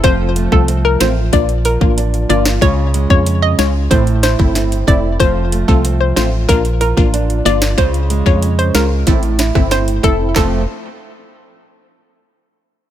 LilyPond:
<<
  \new Staff \with { instrumentName = "Synth pluck" } { \time 4/4 \key f \major \tempo 4 = 93 c''16 r8 a'16 r16 bes'16 c''16 r16 d''16 r16 bes'16 r8. d''16 r16 | des''16 r8 des''16 r16 ees''16 des''16 r16 c''16 r16 c''16 r8. d''16 r16 | c''16 r8 a'16 r16 c''16 c''16 r16 bes'16 r16 bes'16 r8. d''16 r16 | c''16 r8 des''16 r16 c''16 bes'16 r4 r16 c''16 r16 a'16 r16 |
a'8 r2. r8 | }
  \new Staff \with { instrumentName = "Nylon-string guitar" } { \time 4/4 \key f \major <f f'>8 a8 c'8 f'8 r8 f'8 d'8 f'8 | <des f'>8 aes8 des'8 f'8 a,8 e'8 c'8 e'8 | <f f'>8 a8 c'8 f'8 r8 f'8 d'8 f'8 | <des f'>8 aes8 des'8 f'8 a,8 e'8 c'8 e'8 |
<f a c' f'>8 r2. r8 | }
  \new Staff \with { instrumentName = "Synth stab" } { \time 4/4 \key f \major <a c' f'>8. <a c' f'>16 r8 <a c' f'>16 r16 <bes d' f'>16 r8 <bes d' f'>8. <bes d' f'>8 | <aes des' f'>8. <aes des' f'>16 r8 <aes des' f'>16 r16 <a c' e'>16 r8 <a c' e'>8. <a c' e'>8 | <a c' f'>8. <a c' f'>16 r8 <a c' f'>16 r16 <bes d' f'>16 r8 <bes d' f'>8. <bes d' f'>8 | <aes des' f'>8. <aes des' f'>16 r8 <aes des' f'>16 r16 <a c' e'>16 r8 <a c' e'>8. <a c' e'>8 |
<a c' f'>8 r2. r8 | }
  \new Staff \with { instrumentName = "FM bass" } { \clef bass \time 4/4 \key f \major f,,8. c,8. a,,8 bes,,8. a,,8. g,,8 | des,8. f,8. des,8 a,,8. g,,8. f,,8 | f,,8. c,8. a,,8 bes,,8. a,,8. g,,8 | des,8. f,8. des,8 a,,8. g,,8. f,,8 |
f,,8 r2. r8 | }
  \new DrumStaff \with { instrumentName = "Drums" } \drummode { \time 4/4 <hh bd>8 hh16 bd16 hh8 <hh sn>8 <hh bd>16 hh16 hh16 bd16 hh16 hh16 hh16 sn16 | <hh bd>8 hh16 bd16 hh8 <hh sn>8 <hh bd>16 hh16 <hh sn>16 bd16 <hh sn>16 hh16 <hh bd>8 | <hh bd>8 hh16 bd16 hh8 <hh sn>8 <hh bd>16 hh16 hh16 bd16 hh16 hh16 hh16 sn16 | <hh bd>16 hh16 hh16 bd16 hh16 hh16 <hh sn>8 <hh bd>16 hh16 <hh sn>16 <bd ss>16 <hh sn>16 hh16 <hh bd>8 |
<hc bd sn>4 r4 r4 r4 | }
>>